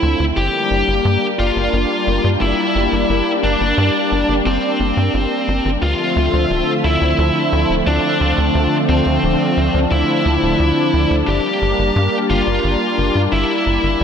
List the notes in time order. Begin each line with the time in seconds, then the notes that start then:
Already playing: D3 F3 A3 C4 E4 E5
0.03 D2
0.20 D2
0.37 G1 G3 A#3 D4 G4
0.71 G1
0.88 G1
1.05 G2
1.39 G1 F4
1.56 G1
1.73 G1
2.07 G1
2.24 G2
2.41 G1 E4
2.75 G1
2.92 G1
3.09 G1
3.44 G1 D4
3.61 G1
3.78 G2
4.12 G1
4.29 G1
4.46 G1 C4
4.80 G1
4.97 G2
5.14 G1
5.48 G1
5.65 G1
5.82 D2 D3 F3 A3 C4 F4 E5
6.16 D2
6.33 D2
6.50 D1
6.84 D2 E4
7.01 D2
7.18 D2
7.53 D2
7.70 D1
7.87 D2 D4
8.21 D2
8.38 D2
8.55 D2 D4
8.89 D2 C4
9.06 D2
9.23 D1
9.57 D2
9.74 D2
9.91 D2 E4
10.26 D2
10.43 D1
10.60 D2
10.94 D2
11.11 D2
11.28 G1 G3 A#3 G4
11.62 G1
11.79 G1
11.96 G2
12.30 G1 F4
12.47 G1
12.64 G1
12.98 G1
13.15 G2
13.32 G1 E4
13.66 G1
13.83 G1
14.00 A1 E3 A3 C4